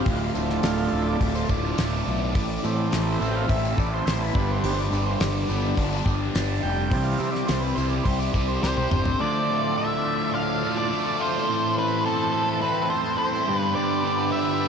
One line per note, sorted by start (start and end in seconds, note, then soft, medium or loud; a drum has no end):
0.00 0.32 F4 medium
0.06 0.29 D1 medium
0.06 1.49 D2 medium
0.06 kick loud
0.06 open hi-hat medium
0.21 tambourine soft
0.34 0.58 D1 medium
0.34 0.61 A2 medium
0.34 1.17 F3 medium
0.34 1.17 A3 medium
0.34 1.17 D4 medium
0.34 tambourine medium
0.50 snare soft
0.63 0.87 D1 medium
0.63 2.06 A2 medium
0.63 0.93 F5 loud
0.63 snare loud
0.63 open hi-hat medium
0.63 tambourine loud
0.92 1.15 D1 medium
0.92 2.35 D3 medium
0.92 1.07 E5 medium
1.08 1.37 D5 medium
1.20 1.43 D1 medium
1.20 1.77 A3 medium
1.20 kick medium
1.20 open hi-hat medium
1.35 1.50 C5 medium
1.35 tambourine medium
1.48 1.72 D1 medium
1.48 2.35 F4 medium
1.48 2.89 D5 medium
1.48 kick medium
1.48 tambourine medium
1.78 2.01 D1 medium
1.78 2.35 A3 medium
1.78 snare loud
1.78 open hi-hat medium
1.78 tambourine loud
2.07 2.35 B1 medium
2.07 2.34 A2 medium
2.07 tambourine soft
2.35 2.57 A1 loud
2.35 3.78 A2 medium
2.35 kick loud
2.35 open hi-hat medium
2.50 tambourine soft
2.62 2.87 A2 medium
2.62 4.06 E3 medium
2.62 3.46 E3 medium
2.62 3.46 A3 medium
2.62 3.46 C4 medium
2.62 tambourine medium
2.91 3.15 A1 medium
2.91 4.35 A3 medium
2.91 snare loud
2.91 open hi-hat medium
2.91 tambourine loud
3.08 tambourine soft
3.19 3.44 A1 medium
3.19 4.34 C4 medium
3.19 3.31 E5 medium
3.19 tambourine medium
3.31 3.35 G5 medium
3.36 3.49 F5 medium
3.48 3.72 A1 medium
3.48 4.05 E4 medium
3.48 3.79 E5 medium
3.48 kick medium
3.48 open hi-hat medium
3.65 tambourine medium
3.77 4.00 A1 medium
3.77 4.35 A4 medium
3.77 3.94 D5 medium
3.77 kick medium
3.77 tambourine medium
3.93 4.22 C5 medium
4.06 4.29 A1 loud
4.06 4.35 E4 medium
4.06 snare loud
4.06 open hi-hat medium
4.06 tambourine medium
4.22 4.51 B4 medium
4.34 4.57 G1 medium
4.34 4.63 G2 medium
4.34 4.73 D3 medium
4.34 4.73 G3 medium
4.34 4.73 B3 medium
4.34 kick loud
4.34 tambourine soft
4.51 4.80 C5 medium
4.63 4.86 G1 medium
4.63 6.07 G2 medium
4.63 open hi-hat medium
4.78 5.05 D5 medium
4.78 tambourine soft
4.92 5.14 G1 medium
4.92 6.35 D3 medium
4.92 tambourine medium
5.06 5.20 C5 medium
5.20 5.43 G1 medium
5.20 6.61 G3 medium
5.20 5.74 D5 medium
5.20 snare loud
5.20 open hi-hat medium
5.20 tambourine loud
5.35 tambourine soft
5.49 5.72 G1 medium
5.49 5.75 D3 medium
5.49 5.75 G3 soft
5.49 5.75 B3 medium
5.49 6.92 B3 medium
5.49 tambourine medium
5.77 6.00 G1 loud
5.77 6.33 D4 medium
5.77 kick medium
5.77 open hi-hat medium
5.93 tambourine medium
6.05 6.28 G1 medium
6.05 6.92 G4 medium
6.05 kick medium
6.05 tambourine medium
6.34 6.57 G1 medium
6.34 6.92 D4 medium
6.34 snare loud
6.34 open hi-hat medium
6.34 tambourine medium
6.62 6.93 F1 medium
6.62 6.92 G3 medium
6.62 7.07 G5 loud
6.62 tambourine soft
6.91 7.14 C2 loud
6.91 8.34 C3 medium
6.91 7.29 E3 medium
6.91 7.30 G3 soft
6.91 7.30 C4 medium
6.91 kick loud
6.91 open hi-hat medium
7.03 7.20 F5 loud
7.03 tambourine soft
7.18 7.43 C3 medium
7.18 8.62 G3 medium
7.18 7.34 E5 medium
7.18 tambourine medium
7.32 7.48 D5 medium
7.32 snare soft
7.32 tambourine soft
7.47 7.72 C2 medium
7.47 8.89 C4 medium
7.47 7.63 C5 medium
7.47 snare loud
7.47 open hi-hat medium
7.47 tambourine medium
7.60 7.77 B4 medium
7.60 tambourine soft
7.75 8.00 C2 medium
7.75 9.20 E4 medium
7.75 7.91 C5 medium
7.75 tambourine medium
7.90 8.06 D5 medium
7.90 tambourine soft
8.04 8.28 C2 loud
8.04 8.61 G4 medium
8.04 8.20 C5 medium
8.04 kick medium
8.04 open hi-hat medium
8.19 8.32 D5 medium
8.19 tambourine medium
8.33 8.57 C2 medium
8.33 9.20 C5 medium
8.33 8.49 D5 medium
8.33 kick medium
8.33 tambourine medium
8.48 8.62 C5 medium
8.48 tambourine soft
8.62 8.86 C2 loud
8.62 9.20 G4 medium
8.62 9.22 C5 medium
8.62 8.78 D5 medium
8.62 snare medium
8.62 tambourine loud
8.77 9.04 C5 medium
8.77 high tom medium
8.91 9.14 G1 medium
8.91 9.20 C4 medium
8.91 mid tom medium
8.91 tambourine soft
9.05 floor tom medium
9.05 tambourine soft
9.19 10.62 D2 medium
9.19 11.46 F3 medium
9.19 13.43 A3 medium
9.19 11.46 D4 medium
9.19 13.43 A4 medium
9.19 11.46 D5 medium
9.19 9.77 D5 medium
9.49 10.91 A2 medium
9.77 10.33 D3 medium
9.77 10.31 E5 medium
10.05 10.90 A3 medium
10.35 11.49 D3 medium
10.35 10.77 F5 medium
10.63 11.18 F4 medium
10.78 11.22 D5 medium
10.92 11.49 A3 medium
11.19 11.48 F4 medium
11.19 11.74 C5 medium
11.48 12.91 A2 medium
11.48 13.46 E3 medium
11.48 13.46 C4 medium
11.48 13.46 C5 medium
11.76 13.19 E3 medium
11.76 12.04 B4 medium
12.05 12.60 C4 medium
12.05 12.61 A4 medium
12.33 13.17 E4 medium
12.61 13.47 C4 medium
12.61 12.90 B4 medium
12.89 13.47 A4 medium
12.89 13.17 C5 medium
13.18 13.47 E4 medium
13.18 13.57 C5 medium
13.47 13.74 G2 medium
13.47 14.68 D3 medium
13.47 14.68 G3 medium
13.47 14.68 B3 medium
13.47 14.68 G4 medium
13.47 14.68 B4 medium
13.57 13.72 B4 medium
13.75 14.68 G2 medium
13.75 14.32 D5 medium
14.03 14.68 D3 medium
14.32 14.68 B3 medium
14.32 14.68 E5 medium
14.61 14.68 D4 medium